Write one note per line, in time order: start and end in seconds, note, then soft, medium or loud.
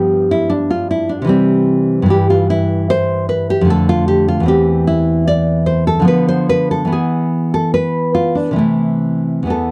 0.00 1.23 G2 soft
0.00 1.24 F3 soft
0.00 1.09 B3 soft
0.00 0.30 G4 medium
0.31 0.52 E4 medium
0.50 0.71 D4 medium
0.71 0.90 F4 medium
0.91 1.11 E4 medium
1.09 1.29 D4 medium
1.22 2.05 C3 medium
1.22 2.05 E3 soft
1.27 2.07 G3 soft
1.27 2.08 C4 medium
2.02 3.61 G2 medium
2.02 3.64 E3 soft
2.08 3.65 G3 soft
2.08 2.30 G4 medium
2.30 2.50 F4 medium
2.50 2.89 E4 medium
2.90 3.29 C5 loud
3.29 3.50 B4 medium
3.50 3.70 G4 medium
3.61 4.40 F2 medium
3.61 4.43 D3 soft
3.67 4.46 A3 soft
3.67 3.89 A4 medium
3.89 4.07 F4 medium
4.08 4.28 G4 medium
4.28 4.48 F4 medium
4.40 6.01 E2 medium
4.40 5.99 E3 soft
4.46 6.03 C4 soft
4.46 4.87 G4 medium
4.87 5.27 E4 medium
5.28 5.66 D5 medium
5.66 5.87 C5 medium
5.87 6.07 A4 medium
6.00 6.84 D3 medium
6.00 6.84 F3 medium
6.05 6.86 B3 medium
6.05 6.28 B4 medium
6.29 6.49 C5 medium
6.49 6.71 B4 medium
6.71 6.92 A4 medium
6.85 8.50 E3 soft
6.85 8.51 B3 soft
6.92 7.51 G#4 medium
7.54 7.73 A4 medium
7.74 8.13 B4 medium
8.15 8.36 F4 medium
8.35 8.57 D4 medium
8.51 9.43 C3 soft
8.51 9.44 E3 soft
8.56 9.46 A3 soft
8.56 9.46 E4 medium
9.43 9.71 E2 soft
9.43 9.71 E3 soft
9.47 9.71 B3 soft
9.47 9.71 A4 medium